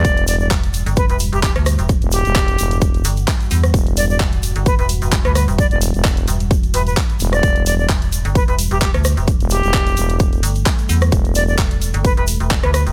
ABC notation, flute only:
X:1
M:4/4
L:1/16
Q:"Swing 16ths" 1/4=130
K:Em
V:1 name="Flute"
d2 d d z4 B B z G G z3 | z2 G6 z8 | z2 d d z4 B B z3 B B z | d d z8 B B z3 d- |
d2 d d z4 B B z G G z3 | z2 G6 z8 | z2 d d z4 B B z3 B B z |]